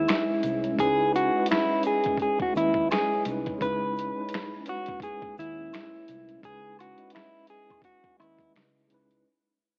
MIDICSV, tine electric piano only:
0, 0, Header, 1, 2, 480
1, 0, Start_track
1, 0, Tempo, 705882
1, 535, Time_signature, 4, 2, 24, 8
1, 6655, End_track
2, 0, Start_track
2, 0, Title_t, "Tine electric piano"
2, 0, Program_c, 0, 4
2, 0, Control_c, 0, 64, 127
2, 0, Note_on_c, 0, 56, 73
2, 0, Note_on_c, 0, 61, 60
2, 0, Note_on_c, 0, 63, 66
2, 0, Note_on_c, 0, 64, 59
2, 0, Note_on_c, 0, 71, 74
2, 511, Note_off_c, 0, 56, 0
2, 511, Note_on_c, 0, 56, 78
2, 524, Note_off_c, 0, 61, 0
2, 524, Note_on_c, 0, 61, 75
2, 534, Note_off_c, 0, 63, 0
2, 534, Note_on_c, 0, 63, 88
2, 542, Note_off_c, 0, 64, 0
2, 542, Note_on_c, 0, 64, 83
2, 554, Note_off_c, 0, 71, 0
2, 554, Note_on_c, 0, 71, 104
2, 746, Note_off_c, 0, 56, 0
2, 752, Note_off_c, 0, 61, 0
2, 758, Note_off_c, 0, 63, 0
2, 762, Note_off_c, 0, 64, 0
2, 768, Note_off_c, 0, 71, 0
2, 907, Note_on_c, 0, 56, 67
2, 917, Note_on_c, 0, 61, 69
2, 928, Note_on_c, 0, 75, 64
2, 937, Note_on_c, 0, 64, 64
2, 949, Note_on_c, 0, 71, 75
2, 1419, Note_off_c, 0, 56, 0
2, 1424, Note_off_c, 0, 61, 0
2, 1429, Note_off_c, 0, 75, 0
2, 1434, Note_off_c, 0, 64, 0
2, 1439, Note_off_c, 0, 71, 0
2, 1723, Note_on_c, 0, 56, 84
2, 1733, Note_on_c, 0, 61, 65
2, 1742, Note_on_c, 0, 75, 59
2, 1755, Note_on_c, 0, 64, 71
2, 1767, Note_on_c, 0, 71, 81
2, 2030, Note_off_c, 0, 56, 0
2, 2035, Note_off_c, 0, 61, 0
2, 2040, Note_off_c, 0, 75, 0
2, 2047, Note_off_c, 0, 64, 0
2, 2052, Note_off_c, 0, 71, 0
2, 2213, Note_on_c, 0, 56, 76
2, 2226, Note_on_c, 0, 61, 68
2, 2237, Note_on_c, 0, 63, 63
2, 2247, Note_on_c, 0, 64, 62
2, 2255, Note_on_c, 0, 71, 80
2, 2374, Note_off_c, 0, 56, 0
2, 2381, Note_off_c, 0, 61, 0
2, 2386, Note_off_c, 0, 63, 0
2, 2391, Note_off_c, 0, 64, 0
2, 2395, Note_off_c, 0, 71, 0
2, 2436, Note_on_c, 0, 56, 105
2, 2449, Note_on_c, 0, 61, 77
2, 2460, Note_on_c, 0, 63, 85
2, 2469, Note_on_c, 0, 64, 96
2, 2481, Note_on_c, 0, 71, 107
2, 2669, Note_off_c, 0, 56, 0
2, 2675, Note_off_c, 0, 61, 0
2, 2681, Note_off_c, 0, 63, 0
2, 2685, Note_off_c, 0, 64, 0
2, 2691, Note_off_c, 0, 71, 0
2, 2816, Note_on_c, 0, 56, 65
2, 2830, Note_on_c, 0, 61, 62
2, 2839, Note_on_c, 0, 63, 65
2, 2849, Note_on_c, 0, 64, 58
2, 2860, Note_on_c, 0, 71, 75
2, 3396, Note_off_c, 0, 56, 0
2, 3403, Note_off_c, 0, 61, 0
2, 3407, Note_off_c, 0, 63, 0
2, 3412, Note_off_c, 0, 64, 0
2, 3418, Note_off_c, 0, 71, 0
2, 4367, Note_on_c, 0, 56, 88
2, 4379, Note_on_c, 0, 61, 87
2, 4387, Note_on_c, 0, 63, 81
2, 4398, Note_on_c, 0, 64, 81
2, 4408, Note_on_c, 0, 71, 102
2, 4594, Note_off_c, 0, 56, 0
2, 4600, Note_off_c, 0, 61, 0
2, 4604, Note_off_c, 0, 63, 0
2, 4610, Note_off_c, 0, 64, 0
2, 4615, Note_off_c, 0, 71, 0
2, 4734, Note_on_c, 0, 56, 68
2, 4746, Note_on_c, 0, 61, 66
2, 4756, Note_on_c, 0, 75, 65
2, 4766, Note_on_c, 0, 64, 61
2, 4777, Note_on_c, 0, 71, 73
2, 5252, Note_off_c, 0, 56, 0
2, 5258, Note_off_c, 0, 61, 0
2, 5263, Note_off_c, 0, 75, 0
2, 5268, Note_off_c, 0, 64, 0
2, 5274, Note_off_c, 0, 71, 0
2, 5560, Note_on_c, 0, 56, 84
2, 5571, Note_on_c, 0, 61, 73
2, 5581, Note_on_c, 0, 75, 74
2, 5592, Note_on_c, 0, 64, 74
2, 5604, Note_on_c, 0, 71, 88
2, 5869, Note_off_c, 0, 56, 0
2, 5875, Note_off_c, 0, 61, 0
2, 5880, Note_off_c, 0, 75, 0
2, 5885, Note_off_c, 0, 64, 0
2, 5891, Note_off_c, 0, 71, 0
2, 6036, Note_on_c, 0, 56, 101
2, 6047, Note_on_c, 0, 61, 75
2, 6055, Note_on_c, 0, 63, 70
2, 6066, Note_on_c, 0, 64, 82
2, 6079, Note_on_c, 0, 71, 104
2, 6206, Note_off_c, 0, 56, 0
2, 6211, Note_off_c, 0, 61, 0
2, 6215, Note_off_c, 0, 63, 0
2, 6221, Note_off_c, 0, 64, 0
2, 6227, Note_off_c, 0, 71, 0
2, 6303, Control_c, 0, 64, 0
2, 6655, End_track
0, 0, End_of_file